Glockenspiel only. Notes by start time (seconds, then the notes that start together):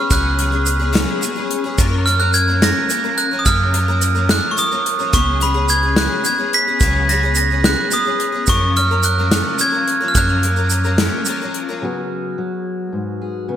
Already playing: F6
0.12 F#6
2.06 F6
2.20 F#6
2.34 G#6
2.63 A#6
3.18 F#6
3.39 D#6
3.46 F6
4.31 F#6
4.51 C#6
4.59 D#6
5.14 C#6
5.43 B5
5.70 G#6
5.98 F#6
6.26 G#6
6.54 B6
7.09 A#6
7.37 A#6
7.65 F#6
7.93 D#6
8.49 C#6
8.77 F6
9.04 F#6
9.32 F#6
9.61 G#6
10.08 F6
10.17 F#6